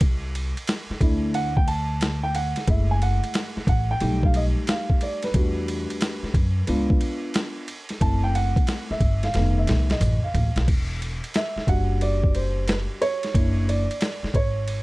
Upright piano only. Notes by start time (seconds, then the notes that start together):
1.01 A3 D4 E4
1.35 F#5
1.57 G5
1.68 A5
2.23 G5
2.35 F#5
2.68 G#3 A3 E4 E5
2.91 G#5
3.03 F#5
3.69 F#5
3.91 G5
4.01 G3 A3 D#4
4.25 F5
4.36 D#5
4.69 F5
5.03 D5
5.24 B4
5.34 G3 A3 D4 F#4
6.67 B3 D4 F4
8.00 A3 C4 E4 A5
8.24 G5
8.35 F#5
8.91 E5
9.24 F5
9.34 D#3 A3 B3
9.58 E5
9.91 D#5
10.24 F5
11.36 E5
11.68 G3 D4 F#4 F#5
12.02 D5
12.35 C5
12.68 B4
13.02 C#5
13.34 A#3 D4 E4
13.68 D5
14.35 C#5